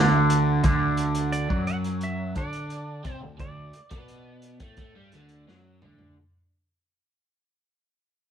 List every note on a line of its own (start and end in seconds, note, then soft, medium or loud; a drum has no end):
0.00 0.61 D2 medium
0.00 0.62 D3 medium
0.30 closed hi-hat medium
0.64 1.46 D2 medium
0.64 1.49 D3 medium
0.64 kick medium
0.64 closed hi-hat medium
0.97 closed hi-hat medium
1.15 closed hi-hat medium
1.32 1.65 D5 medium
1.32 closed hi-hat medium
1.50 2.32 F#2 medium
1.50 2.35 F#3 medium
1.50 kick loud
1.67 1.76 F#5 medium
1.67 closed hi-hat medium
1.84 closed hi-hat medium
2.01 2.37 E5 medium
2.01 closed hi-hat medium
2.35 3.01 D3 medium
2.35 3.04 D4 medium
2.35 3.06 D5 medium
2.35 kick loud
2.35 closed hi-hat medium
2.53 closed hi-hat medium
2.70 closed hi-hat medium
3.05 3.21 C3 medium
3.05 3.21 C4 loud
3.05 3.16 C5 medium
3.05 kick medium
3.05 closed hi-hat medium
3.21 3.38 D2 medium
3.21 3.37 D3 medium
3.39 3.71 D2 medium
3.39 3.67 D3 medium
3.39 4.71 D5 medium
3.39 kick medium
3.39 closed hi-hat medium
3.73 closed hi-hat medium
3.91 4.56 B2 medium
3.91 4.59 B3 medium
3.91 kick loud
3.91 closed hi-hat medium
4.08 closed hi-hat medium
4.42 closed hi-hat medium
4.60 4.76 A2 medium
4.60 4.77 A3 medium
4.60 kick medium
4.60 closed hi-hat medium
4.71 5.43 C5 medium
4.77 4.93 A2 medium
4.77 4.94 A3 medium
4.77 kick loud
4.77 closed hi-hat medium
4.96 5.11 G2 medium
4.96 5.11 G3 medium
5.12 5.45 D2 medium
5.12 5.47 D3 medium
5.12 closed hi-hat medium
5.29 closed hi-hat medium
5.48 5.80 F#2 medium
5.48 5.81 F#3 medium
5.48 snare medium
5.82 6.15 D2 medium
5.82 6.15 D3 medium
5.82 mid tom medium
5.99 floor tom medium